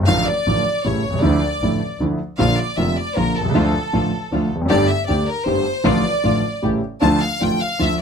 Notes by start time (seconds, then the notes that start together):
0.03 G#1 F5
0.08 A1 A2 D3 F3 A3 F4
0.25 D5
0.46 A1 A2 D3 F3 A3 F4
0.84 A1 A2 C#3 G3 A3 E4 C#5
1.05 C2
1.10 B1 C2
1.19 C#2 D3 F3 A3 D5
1.23 D2 E4
1.62 A1 A2 D3 F3 A3 E4
2.00 D2 D3 F3 A3 E4
2.38 A#1 A#2 D3 F3 A#3 D4 F4 F5
2.58 D5
2.77 F1 F2 D3 F3 A#3 D4 F4 E5
2.96 D5
3.16 A#1 A#2 D3 F3 A#3 D4 F4 A#4
3.36 C2 A4
3.41 B1
3.45 C2 C#2
3.55 D2 D3 F3 A3 D4 F4
3.93 A1 A2 D3 F3 A3 D4 F4
4.32 D2 D3 F3 A3 D4 F4
4.51 F1
4.55 E2
4.61 F2
4.66 F#2 A3 D4 G4 D5
4.70 G1 G2 D3 G3 A3 G4
4.88 E5
5.06 D2 D3 G3 A3 D4 G4 D5
5.26 A#4
5.45 G1 G2 D3 G3 A3 D4 G4 C5
5.84 A1 A2 D3 F3 A3 D4 F4 D5
6.24 A1 A2 D3 F3 A3 D4 F4
6.62 A1 A2 C#3 G3 A3 C#4 E4 G4
7.01 D2 D3 F3 A3 D4 F4 A5
7.20 F5
7.41 A1 A2 D3 F3 A3 D4 F4 G5
7.60 F5
7.79 D2 D3 F3 A3 D4 F4 E5